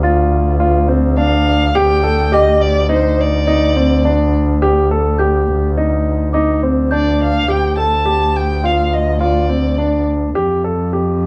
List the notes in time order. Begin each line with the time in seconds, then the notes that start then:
Already playing: D2
0.03 F4 A6
0.60 F4
0.88 C4
1.17 D4 F5
1.75 D2 G4 G5
2.04 A4
2.32 G4 D#5 D6
2.61 D5
2.89 D#4 C5
3.21 D5
3.47 D#4
3.76 C4
4.05 D4
4.62 G4
4.91 A4
5.19 G4 G6
5.77 D#4
6.33 D#4 D6
6.63 C4
6.91 D4 D5 G6
7.23 F5
7.48 D2 G4 G5
7.77 A4 A5
8.05 G4
8.36 G5
8.64 F4 F5
8.93 D#5
9.20 F4 D5
9.49 C4
9.78 D4
10.35 F2 G4
10.64 A4
10.93 G4